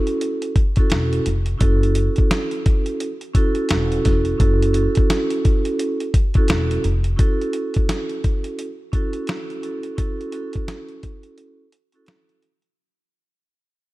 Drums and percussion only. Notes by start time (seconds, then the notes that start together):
0.07 closed hi-hat
0.21 closed hi-hat
0.42 closed hi-hat
0.56 kick, closed hi-hat
0.76 kick, closed hi-hat
0.90 snare, closed hi-hat
1.13 closed hi-hat
1.26 closed hi-hat
1.46 closed hi-hat
1.61 kick, closed hi-hat
1.83 closed hi-hat
1.95 closed hi-hat
2.16 kick, closed hi-hat
2.31 snare, closed hi-hat
2.51 closed hi-hat
2.66 kick, closed hi-hat
2.86 closed hi-hat
3.00 closed hi-hat
3.21 closed hi-hat
3.35 kick, closed hi-hat
3.55 closed hi-hat
3.69 snare, closed hi-hat
3.92 closed hi-hat
4.05 kick, snare, closed hi-hat
4.25 closed hi-hat
4.40 kick, closed hi-hat
4.62 closed hi-hat
4.74 closed hi-hat
4.95 kick, closed hi-hat
5.10 snare, closed hi-hat
5.30 closed hi-hat
5.45 kick, closed hi-hat
5.65 closed hi-hat
5.79 closed hi-hat
6.00 closed hi-hat
6.14 kick, closed hi-hat
6.34 kick, closed hi-hat
6.48 snare, closed hi-hat
6.71 closed hi-hat
6.84 closed hi-hat
7.04 closed hi-hat
7.19 kick, closed hi-hat
7.42 closed hi-hat
7.53 closed hi-hat
7.74 kick, closed hi-hat
7.89 snare, closed hi-hat
8.09 closed hi-hat
8.24 kick, closed hi-hat
8.44 closed hi-hat
8.59 closed hi-hat
8.93 kick, closed hi-hat
9.13 closed hi-hat
9.27 snare, closed hi-hat
9.50 closed hi-hat
9.63 closed hi-hat
9.83 closed hi-hat
9.98 kick, closed hi-hat
10.21 closed hi-hat
10.32 closed hi-hat
10.53 kick, closed hi-hat
10.68 snare, closed hi-hat
10.89 closed hi-hat
11.03 kick, closed hi-hat
11.23 closed hi-hat
11.38 closed hi-hat
11.72 closed hi-hat
11.92 closed hi-hat
12.06 snare, closed hi-hat
12.29 closed hi-hat
12.42 closed hi-hat
12.62 closed hi-hat